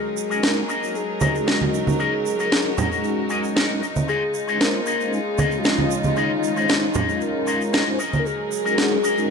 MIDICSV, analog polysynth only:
0, 0, Header, 1, 2, 480
1, 0, Start_track
1, 0, Tempo, 521739
1, 1837, Time_signature, 4, 2, 24, 8
1, 8559, End_track
2, 0, Start_track
2, 0, Title_t, "Analog polysynth"
2, 0, Program_c, 0, 90
2, 279, Note_on_c, 0, 56, 81
2, 281, Note_on_c, 0, 61, 73
2, 283, Note_on_c, 0, 63, 73
2, 286, Note_on_c, 0, 66, 74
2, 288, Note_on_c, 0, 70, 91
2, 378, Note_off_c, 0, 56, 0
2, 379, Note_off_c, 0, 61, 0
2, 380, Note_off_c, 0, 63, 0
2, 381, Note_off_c, 0, 66, 0
2, 382, Note_off_c, 0, 70, 0
2, 392, Note_on_c, 0, 56, 89
2, 393, Note_on_c, 0, 61, 84
2, 397, Note_on_c, 0, 63, 82
2, 399, Note_on_c, 0, 66, 82
2, 402, Note_on_c, 0, 70, 100
2, 573, Note_off_c, 0, 56, 0
2, 574, Note_off_c, 0, 61, 0
2, 575, Note_off_c, 0, 63, 0
2, 576, Note_off_c, 0, 66, 0
2, 578, Note_off_c, 0, 70, 0
2, 759, Note_on_c, 0, 56, 76
2, 762, Note_on_c, 0, 61, 69
2, 764, Note_on_c, 0, 63, 69
2, 767, Note_on_c, 0, 66, 69
2, 769, Note_on_c, 0, 70, 83
2, 933, Note_off_c, 0, 56, 0
2, 934, Note_off_c, 0, 61, 0
2, 935, Note_off_c, 0, 63, 0
2, 937, Note_off_c, 0, 66, 0
2, 937, Note_off_c, 0, 70, 0
2, 1237, Note_on_c, 0, 56, 89
2, 1241, Note_on_c, 0, 61, 85
2, 1247, Note_on_c, 0, 63, 83
2, 1250, Note_on_c, 0, 66, 83
2, 1256, Note_on_c, 0, 75, 99
2, 2170, Note_off_c, 0, 56, 0
2, 2172, Note_off_c, 0, 61, 0
2, 2175, Note_off_c, 0, 63, 0
2, 2177, Note_off_c, 0, 66, 0
2, 2180, Note_off_c, 0, 75, 0
2, 2200, Note_on_c, 0, 56, 89
2, 2202, Note_on_c, 0, 61, 84
2, 2206, Note_on_c, 0, 63, 84
2, 2209, Note_on_c, 0, 66, 84
2, 2210, Note_on_c, 0, 70, 102
2, 2288, Note_off_c, 0, 56, 0
2, 2289, Note_off_c, 0, 61, 0
2, 2291, Note_off_c, 0, 63, 0
2, 2292, Note_off_c, 0, 66, 0
2, 2293, Note_off_c, 0, 70, 0
2, 2315, Note_on_c, 0, 56, 79
2, 2316, Note_on_c, 0, 61, 72
2, 2319, Note_on_c, 0, 63, 70
2, 2320, Note_on_c, 0, 66, 72
2, 2322, Note_on_c, 0, 70, 88
2, 2494, Note_off_c, 0, 56, 0
2, 2495, Note_off_c, 0, 61, 0
2, 2497, Note_off_c, 0, 63, 0
2, 2497, Note_off_c, 0, 66, 0
2, 2498, Note_off_c, 0, 70, 0
2, 2677, Note_on_c, 0, 56, 83
2, 2681, Note_on_c, 0, 61, 74
2, 2686, Note_on_c, 0, 63, 74
2, 2689, Note_on_c, 0, 66, 72
2, 2695, Note_on_c, 0, 68, 89
2, 3370, Note_off_c, 0, 56, 0
2, 3372, Note_off_c, 0, 61, 0
2, 3374, Note_off_c, 0, 63, 0
2, 3376, Note_off_c, 0, 66, 0
2, 3379, Note_off_c, 0, 68, 0
2, 3398, Note_on_c, 0, 56, 85
2, 3401, Note_on_c, 0, 61, 78
2, 3403, Note_on_c, 0, 63, 77
2, 3404, Note_on_c, 0, 66, 76
2, 3407, Note_on_c, 0, 70, 92
2, 3504, Note_off_c, 0, 56, 0
2, 3506, Note_off_c, 0, 61, 0
2, 3507, Note_off_c, 0, 63, 0
2, 3508, Note_off_c, 0, 66, 0
2, 3509, Note_off_c, 0, 70, 0
2, 4120, Note_on_c, 0, 56, 79
2, 4122, Note_on_c, 0, 61, 75
2, 4124, Note_on_c, 0, 63, 75
2, 4126, Note_on_c, 0, 65, 75
2, 4129, Note_on_c, 0, 72, 87
2, 4218, Note_off_c, 0, 56, 0
2, 4219, Note_off_c, 0, 61, 0
2, 4221, Note_off_c, 0, 63, 0
2, 4221, Note_off_c, 0, 65, 0
2, 4223, Note_off_c, 0, 72, 0
2, 4232, Note_on_c, 0, 56, 90
2, 4235, Note_on_c, 0, 61, 81
2, 4237, Note_on_c, 0, 63, 82
2, 4239, Note_on_c, 0, 65, 82
2, 4241, Note_on_c, 0, 72, 97
2, 4413, Note_off_c, 0, 56, 0
2, 4414, Note_off_c, 0, 61, 0
2, 4415, Note_off_c, 0, 63, 0
2, 4417, Note_off_c, 0, 65, 0
2, 4418, Note_off_c, 0, 72, 0
2, 4597, Note_on_c, 0, 56, 75
2, 4599, Note_on_c, 0, 61, 68
2, 4601, Note_on_c, 0, 63, 71
2, 4604, Note_on_c, 0, 65, 72
2, 4606, Note_on_c, 0, 72, 83
2, 4772, Note_off_c, 0, 56, 0
2, 4773, Note_off_c, 0, 61, 0
2, 4774, Note_off_c, 0, 63, 0
2, 4775, Note_off_c, 0, 65, 0
2, 4776, Note_off_c, 0, 72, 0
2, 5072, Note_on_c, 0, 56, 88
2, 5077, Note_on_c, 0, 61, 81
2, 5082, Note_on_c, 0, 63, 82
2, 5085, Note_on_c, 0, 65, 81
2, 5091, Note_on_c, 0, 75, 102
2, 6007, Note_off_c, 0, 56, 0
2, 6010, Note_off_c, 0, 61, 0
2, 6012, Note_off_c, 0, 63, 0
2, 6014, Note_off_c, 0, 65, 0
2, 6017, Note_off_c, 0, 75, 0
2, 6037, Note_on_c, 0, 56, 92
2, 6040, Note_on_c, 0, 61, 86
2, 6042, Note_on_c, 0, 63, 83
2, 6045, Note_on_c, 0, 65, 83
2, 6047, Note_on_c, 0, 72, 103
2, 6127, Note_off_c, 0, 56, 0
2, 6128, Note_off_c, 0, 61, 0
2, 6129, Note_off_c, 0, 63, 0
2, 6131, Note_off_c, 0, 65, 0
2, 6132, Note_off_c, 0, 72, 0
2, 6154, Note_on_c, 0, 56, 78
2, 6156, Note_on_c, 0, 61, 73
2, 6159, Note_on_c, 0, 63, 72
2, 6161, Note_on_c, 0, 65, 72
2, 6163, Note_on_c, 0, 72, 87
2, 6334, Note_off_c, 0, 56, 0
2, 6335, Note_off_c, 0, 61, 0
2, 6336, Note_off_c, 0, 63, 0
2, 6337, Note_off_c, 0, 65, 0
2, 6339, Note_off_c, 0, 72, 0
2, 6514, Note_on_c, 0, 56, 84
2, 6519, Note_on_c, 0, 61, 75
2, 6523, Note_on_c, 0, 63, 75
2, 6528, Note_on_c, 0, 65, 74
2, 6532, Note_on_c, 0, 70, 90
2, 7209, Note_off_c, 0, 56, 0
2, 7211, Note_off_c, 0, 61, 0
2, 7213, Note_off_c, 0, 63, 0
2, 7215, Note_off_c, 0, 65, 0
2, 7218, Note_off_c, 0, 70, 0
2, 7238, Note_on_c, 0, 56, 85
2, 7241, Note_on_c, 0, 61, 79
2, 7243, Note_on_c, 0, 63, 77
2, 7244, Note_on_c, 0, 65, 78
2, 7247, Note_on_c, 0, 72, 93
2, 7341, Note_off_c, 0, 56, 0
2, 7342, Note_off_c, 0, 61, 0
2, 7343, Note_off_c, 0, 63, 0
2, 7344, Note_off_c, 0, 65, 0
2, 7346, Note_off_c, 0, 72, 0
2, 7960, Note_on_c, 0, 56, 83
2, 7960, Note_on_c, 0, 61, 77
2, 7964, Note_on_c, 0, 63, 76
2, 7967, Note_on_c, 0, 66, 76
2, 7968, Note_on_c, 0, 70, 88
2, 8059, Note_off_c, 0, 56, 0
2, 8059, Note_off_c, 0, 61, 0
2, 8060, Note_off_c, 0, 63, 0
2, 8062, Note_off_c, 0, 66, 0
2, 8063, Note_off_c, 0, 70, 0
2, 8072, Note_on_c, 0, 56, 90
2, 8075, Note_on_c, 0, 61, 82
2, 8076, Note_on_c, 0, 63, 86
2, 8079, Note_on_c, 0, 66, 85
2, 8082, Note_on_c, 0, 70, 97
2, 8253, Note_off_c, 0, 56, 0
2, 8255, Note_off_c, 0, 61, 0
2, 8255, Note_off_c, 0, 63, 0
2, 8257, Note_off_c, 0, 66, 0
2, 8258, Note_off_c, 0, 70, 0
2, 8439, Note_on_c, 0, 56, 77
2, 8440, Note_on_c, 0, 61, 71
2, 8442, Note_on_c, 0, 63, 72
2, 8445, Note_on_c, 0, 66, 70
2, 8448, Note_on_c, 0, 70, 84
2, 8559, Note_off_c, 0, 56, 0
2, 8559, Note_off_c, 0, 61, 0
2, 8559, Note_off_c, 0, 63, 0
2, 8559, Note_off_c, 0, 66, 0
2, 8559, Note_off_c, 0, 70, 0
2, 8559, End_track
0, 0, End_of_file